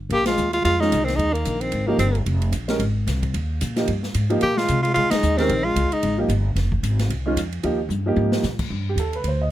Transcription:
0.10 upright bass A#1, trombone A#3, tenor saxophone G4, ride
0.25 trombone G#3, tenor saxophone F4, snare, ride
0.37 upright bass D#2, hi-hat pedal
0.51 trombone G#3, tenor saxophone F4, ride
0.61 upright bass F2, trombone G#3, tenor saxophone F4, ride
0.77 upright piano D#3 G#3, trombone G#3, tenor saxophone D#4
0.81 upright piano C#4 F4, snare
0.92 upright bass C2, hi-hat pedal, ride
1.03 trombone D#3, tenor saxophone C4
1.08 snare, ride
1.15 upright bass D#2, trombone G#3, tenor saxophone D#4, ride
1.31 trombone D#3, tenor saxophone A#3
1.35 ride
1.45 upright bass A#1, hi-hat pedal, ride
1.59 trombone D#3, tenor saxophone C4, ride
1.72 upright bass G#1, ride
1.86 trombone C#3, upright piano F3 A#3 D#4 G4, tenor saxophone A#3
1.98 upright bass G1, trombone D#3, tenor saxophone C4, hi-hat pedal, ride
2.15 ride
2.26 upright bass F1, ride
2.42 ride
2.52 upright bass A#1, hi-hat pedal, ride
2.68 upright piano G#3 C#4 G4 A#4, snare, ride
2.79 upright bass G#1, ride
3.07 upright bass C2, snare, hi-hat pedal, ride
3.23 kick, ride
3.34 upright bass D#2, ride
3.61 upright bass A#2, hi-hat pedal, ride
3.76 upright piano F3 A#3 D#4 G4, snare, ride
3.88 upright bass G2, ride
4.03 snare
4.14 upright bass G#2, hi-hat pedal, ride
4.30 upright piano F3 A#3 D#4 G4, ride
4.41 upright bass A#2, trombone A#3, tenor saxophone G4, ride
4.56 trombone G#3, tenor saxophone F4, snare
4.68 upright bass C3, hi-hat pedal, ride
4.83 trombone G#3, tenor saxophone F4, ride
4.94 upright bass C2, trombone G#3, tenor saxophone F4, ride
5.10 trombone G#3, tenor saxophone D#4, muted upright bass stroke, snare, ride
5.22 upright bass D#2, hi-hat pedal
5.37 trombone D#3, upright piano G#3 C#4 G4 A#4, tenor saxophone C4, snare, ride
5.49 upright bass A#1, ride
5.64 trombone G#3, tenor saxophone F4
5.76 upright bass C2, hi-hat pedal, ride
5.91 trombone G#3, tenor saxophone D#4, muted upright bass stroke, ride
6.03 upright bass G#1, ride
6.18 upright piano F3 A#3 D#4 G4
6.29 upright bass G1, hi-hat pedal, ride
6.56 upright bass F1, snare, ride
6.72 kick
6.83 upright bass G#1, hi-hat pedal, ride
6.99 snare, ride
7.09 upright bass C2, ride
7.26 upright piano D#3 G#3 C#4 F4
7.35 upright bass F2, hi-hat pedal, ride
7.52 ride
7.63 upright bass D#2, upright piano F3 A#3 D#4 G4, ride
7.89 upright bass G2, hi-hat pedal, high tom
8.06 upright piano F3 A#3 D#4 G4
8.16 upright bass G#2, high tom
8.32 snare
8.43 upright bass A#2, snare, hi-hat pedal
8.59 kick, crash
8.70 upright bass G2
8.89 upright piano G4
8.96 upright bass D#2, upright piano A4, hi-hat pedal, ride
9.13 upright piano B4, ride
9.24 upright bass D2, upright piano C5, ride
9.41 upright piano D#5

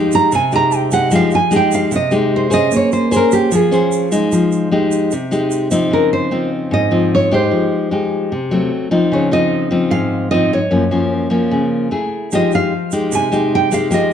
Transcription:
Already playing: nylon-string guitar F3 G#3 D#4 G4
0.12 nylon-string guitar A#5, shaker
0.32 nylon-string guitar C3 G#5, shaker
0.52 nylon-string guitar G#3 D#4 G4 A#5, shaker
0.72 nylon-string guitar G5, shaker
0.91 nylon-string guitar G#3 D#4 G4 F#5, shaker
1.11 nylon-string guitar F3 G#3 D#4 G4, shaker
1.15 nylon-string guitar F5
1.31 nylon-string guitar G#5, shaker
1.51 nylon-string guitar G#3 D#4 G4, shaker
1.56 nylon-string guitar G5
1.72 nylon-string guitar F5, shaker
1.91 nylon-string guitar C3, shaker
1.96 nylon-string guitar D#5
2.11 nylon-string guitar G#3 D#4 G4, shaker
2.36 nylon-string guitar C5
2.50 nylon-string guitar C#4 G#4 C5 D#5, shaker
2.71 nylon-string guitar A#3, shaker
2.76 nylon-string guitar C#5
2.92 nylon-string guitar C5, shaker
3.11 nylon-string guitar C#4 G#4 C5, shaker
3.16 nylon-string guitar A#4
3.31 nylon-string guitar G4, shaker
3.52 nylon-string guitar F3 G#4, shaker
3.71 nylon-string guitar C#4 G#4 C5, shaker
3.92 shaker
4.12 nylon-string guitar G#3 D#4, shaker
4.32 nylon-string guitar F3, shaker
4.52 shaker
4.71 nylon-string guitar G#3 D#4 G4
4.92 shaker
5.11 nylon-string guitar C3, shaker
5.31 nylon-string guitar G#3 D#4 G4, shaker
5.51 shaker
5.71 nylon-string guitar F3 C4 D#4, shaker
5.91 nylon-string guitar C#3 A#4
6.13 nylon-string guitar C5
6.31 nylon-string guitar F3 C4 D#4
6.71 nylon-string guitar G#2 D#5
6.91 nylon-string guitar F3 C4 D#4
7.15 nylon-string guitar C#5
7.31 nylon-string guitar G#3 D#4 G4 C5
7.51 nylon-string guitar F3
7.91 nylon-string guitar G#3 D#4 G4
8.32 nylon-string guitar C3
8.51 nylon-string guitar F#3 A3 C4
8.91 nylon-string guitar F3 C4 D#4
9.12 nylon-string guitar C#3 C#5
9.31 nylon-string guitar F3 C4 D#4 D#5
9.71 nylon-string guitar F3 C4 D#4
9.91 nylon-string guitar G#2 F5
10.31 nylon-string guitar F3 C4 D#4 D#5
10.53 nylon-string guitar C#5
10.71 nylon-string guitar F#2 F3 A#3 C#4
10.91 nylon-string guitar F3 A#3 C#4
11.30 nylon-string guitar F3 A#3 C#4
11.51 nylon-string guitar C#3
11.91 nylon-string guitar A3 E4 G#4
12.32 nylon-string guitar F3 G#3 D#4 G4 D#5, shaker
12.52 nylon-string guitar F5, shaker
12.91 nylon-string guitar G#3 D#4 G4, shaker
13.12 nylon-string guitar C3 G#5, shaker
13.32 nylon-string guitar G#3 D#4 G4, shaker
13.55 nylon-string guitar G5
13.71 nylon-string guitar G#3 D#4 G4 F5, shaker
13.91 nylon-string guitar F3 G#3 D#4 G4 D#5, shaker

